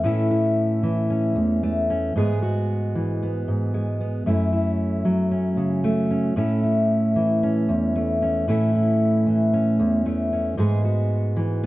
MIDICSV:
0, 0, Header, 1, 2, 480
1, 0, Start_track
1, 0, Key_signature, 3, "major"
1, 0, Tempo, 526778
1, 38, Time_signature, 4, 2, 24, 8
1, 10626, End_track
2, 0, Start_track
2, 0, Title_t, "Steel-string acoustic guitar"
2, 0, Program_c, 0, 25
2, 0, Note_on_c, 0, 52, 53
2, 32, Note_on_c, 0, 45, 61
2, 39, Note_on_c, 0, 57, 52
2, 47, Note_on_c, 0, 61, 52
2, 52, Note_on_c, 0, 64, 59
2, 276, Note_off_c, 0, 64, 0
2, 279, Note_on_c, 0, 64, 45
2, 753, Note_off_c, 0, 52, 0
2, 757, Note_on_c, 0, 52, 52
2, 992, Note_off_c, 0, 61, 0
2, 1003, Note_on_c, 0, 61, 52
2, 1235, Note_on_c, 0, 40, 52
2, 1237, Note_off_c, 0, 45, 0
2, 1477, Note_off_c, 0, 57, 0
2, 1487, Note_on_c, 0, 57, 52
2, 1723, Note_off_c, 0, 61, 0
2, 1732, Note_on_c, 0, 61, 53
2, 1936, Note_off_c, 0, 57, 0
2, 1938, Note_off_c, 0, 61, 0
2, 1959, Note_off_c, 0, 40, 0
2, 1964, Note_on_c, 0, 44, 59
2, 1973, Note_on_c, 0, 56, 52
2, 1977, Note_on_c, 0, 59, 50
2, 1978, Note_off_c, 0, 64, 0
2, 1982, Note_on_c, 0, 68, 63
2, 2204, Note_off_c, 0, 68, 0
2, 2208, Note_on_c, 0, 66, 47
2, 2235, Note_off_c, 0, 52, 0
2, 2691, Note_on_c, 0, 52, 51
2, 2930, Note_off_c, 0, 59, 0
2, 2939, Note_on_c, 0, 59, 51
2, 3159, Note_off_c, 0, 44, 0
2, 3170, Note_on_c, 0, 44, 50
2, 3397, Note_off_c, 0, 56, 0
2, 3408, Note_on_c, 0, 56, 44
2, 3638, Note_off_c, 0, 59, 0
2, 3649, Note_on_c, 0, 59, 50
2, 3858, Note_off_c, 0, 56, 0
2, 3859, Note_off_c, 0, 44, 0
2, 3859, Note_off_c, 0, 66, 0
2, 3882, Note_on_c, 0, 42, 56
2, 3887, Note_off_c, 0, 59, 0
2, 3888, Note_on_c, 0, 57, 49
2, 3897, Note_on_c, 0, 61, 51
2, 3904, Note_on_c, 0, 64, 56
2, 3909, Note_off_c, 0, 52, 0
2, 4120, Note_off_c, 0, 64, 0
2, 4124, Note_on_c, 0, 64, 47
2, 4600, Note_on_c, 0, 54, 50
2, 4838, Note_off_c, 0, 61, 0
2, 4842, Note_on_c, 0, 61, 50
2, 5076, Note_on_c, 0, 49, 49
2, 5318, Note_off_c, 0, 57, 0
2, 5321, Note_on_c, 0, 57, 49
2, 5562, Note_off_c, 0, 61, 0
2, 5566, Note_on_c, 0, 61, 49
2, 5773, Note_off_c, 0, 49, 0
2, 5776, Note_off_c, 0, 54, 0
2, 5777, Note_off_c, 0, 42, 0
2, 5796, Note_on_c, 0, 45, 62
2, 5799, Note_off_c, 0, 57, 0
2, 5803, Note_on_c, 0, 57, 51
2, 5804, Note_off_c, 0, 61, 0
2, 5808, Note_on_c, 0, 61, 53
2, 5812, Note_off_c, 0, 64, 0
2, 5816, Note_on_c, 0, 64, 54
2, 6043, Note_off_c, 0, 64, 0
2, 6046, Note_on_c, 0, 64, 46
2, 6522, Note_on_c, 0, 52, 51
2, 6768, Note_off_c, 0, 61, 0
2, 6772, Note_on_c, 0, 61, 54
2, 7002, Note_off_c, 0, 45, 0
2, 7003, Note_on_c, 0, 40, 57
2, 7239, Note_off_c, 0, 57, 0
2, 7250, Note_on_c, 0, 57, 54
2, 7480, Note_off_c, 0, 61, 0
2, 7491, Note_on_c, 0, 61, 51
2, 7699, Note_off_c, 0, 57, 0
2, 7700, Note_off_c, 0, 61, 0
2, 7724, Note_on_c, 0, 45, 56
2, 7725, Note_off_c, 0, 40, 0
2, 7731, Note_on_c, 0, 57, 57
2, 7738, Note_on_c, 0, 61, 57
2, 7741, Note_off_c, 0, 64, 0
2, 7745, Note_on_c, 0, 64, 55
2, 7968, Note_off_c, 0, 64, 0
2, 7971, Note_on_c, 0, 64, 46
2, 8441, Note_off_c, 0, 52, 0
2, 8445, Note_on_c, 0, 52, 52
2, 8677, Note_off_c, 0, 61, 0
2, 8688, Note_on_c, 0, 61, 54
2, 8922, Note_off_c, 0, 45, 0
2, 8925, Note_on_c, 0, 40, 58
2, 9154, Note_off_c, 0, 57, 0
2, 9165, Note_on_c, 0, 57, 52
2, 9398, Note_off_c, 0, 61, 0
2, 9409, Note_on_c, 0, 61, 51
2, 9613, Note_off_c, 0, 57, 0
2, 9615, Note_off_c, 0, 61, 0
2, 9631, Note_off_c, 0, 40, 0
2, 9635, Note_on_c, 0, 44, 63
2, 9642, Note_on_c, 0, 56, 53
2, 9652, Note_on_c, 0, 59, 54
2, 9653, Note_off_c, 0, 64, 0
2, 9657, Note_on_c, 0, 68, 56
2, 9879, Note_off_c, 0, 68, 0
2, 9882, Note_on_c, 0, 66, 50
2, 9910, Note_off_c, 0, 52, 0
2, 10355, Note_on_c, 0, 52, 55
2, 10599, Note_off_c, 0, 59, 0
2, 10626, Note_off_c, 0, 44, 0
2, 10626, Note_off_c, 0, 52, 0
2, 10626, Note_off_c, 0, 56, 0
2, 10626, Note_off_c, 0, 66, 0
2, 10626, End_track
0, 0, End_of_file